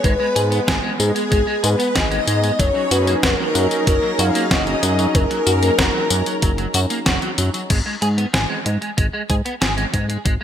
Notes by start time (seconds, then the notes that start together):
Already playing: G#3 B3
0.04 G#1 G#3 B4, kick, closed hi-hat, tambourine
0.20 G#3
0.36 G#2 G#4, closed hi-hat, tambourine
0.52 B3, closed hi-hat, tambourine
0.68 G#1 G#4, kick, snare, closed hi-hat, tambourine
0.83 G#3
0.99 G#2 G#3 G#4, closed hi-hat, tambourine
1.15 G#3, closed hi-hat, tambourine
1.31 G#1 G#3, kick, closed hi-hat, tambourine
1.47 G#3
1.63 G#2 G#4 B4, closed hi-hat, tambourine
1.79 B3, closed hi-hat, tambourine
1.95 G#1 G#4 D#5, kick, snare, closed hi-hat, tambourine
2.11 G#3, closed hi-hat
2.27 G#2 G#3, closed hi-hat, tambourine
2.43 G#3, closed hi-hat, tambourine
2.59 F#1 F#3 C#4 D#4 G#4 C#5 A#5, kick, closed hi-hat, tambourine
2.75 F#3
2.91 F#2 F#4 B4, closed hi-hat, tambourine
3.07 A#3, closed hi-hat, tambourine
3.23 F#1 F#4 A#4, kick, snare, closed hi-hat, tambourine
3.39 F#3
3.55 F#2 F#3, closed hi-hat, tambourine
3.71 F#3, closed hi-hat, tambourine
3.87 F#1 F#3 A#4, kick, closed hi-hat, tambourine
4.03 F#3
4.19 F#2 F#4 F5, closed hi-hat, tambourine
4.35 A#3, closed hi-hat, tambourine
4.51 F#1 F#4 D#5, kick, snare, closed hi-hat, tambourine
4.67 F#3, closed hi-hat
4.83 F#2 F#3, closed hi-hat, tambourine
4.99 F#3, closed hi-hat, tambourine
5.14 F#1 F#3 A#4, kick, closed hi-hat, tambourine
5.31 F#3, closed hi-hat
5.46 F#2 F#4, closed hi-hat, tambourine
5.63 A#3, closed hi-hat, tambourine
5.79 F#1 F#4, kick, snare, closed hi-hat, tambourine
5.94 F#3
6.10 F#2 F#3, closed hi-hat, tambourine
6.26 F#3, closed hi-hat, tambourine
6.42 F#1 F#3, kick, closed hi-hat, tambourine
6.58 F#3, closed hi-hat
6.74 F#2 F#4, closed hi-hat, tambourine
6.90 A#3, closed hi-hat, tambourine
7.06 F#1 F#4, kick, snare, closed hi-hat, tambourine
7.22 F#3, closed hi-hat
7.38 F#2 F#3, closed hi-hat, tambourine
7.54 F#3, closed hi-hat, tambourine
7.70 G#1 G#3, kick, closed hi-hat, crash
7.86 G#3
8.02 G#2 G#4, closed hi-hat
8.18 B3, closed hi-hat
8.33 G#1 G#4, snare, closed hi-hat
8.49 G#3
8.65 G#2 G#3, closed hi-hat
8.82 G#3, closed hi-hat
8.97 G#1 G#3, kick, closed hi-hat
9.13 G#3
9.30 G#2 G#4, kick, closed hi-hat
9.45 B3, closed hi-hat
9.61 G#1 G#4, snare, closed hi-hat
9.77 G#3, closed hi-hat
9.93 G#2 G#3, kick, closed hi-hat
10.09 G#3, closed hi-hat
10.25 G#1 G#3, kick, closed hi-hat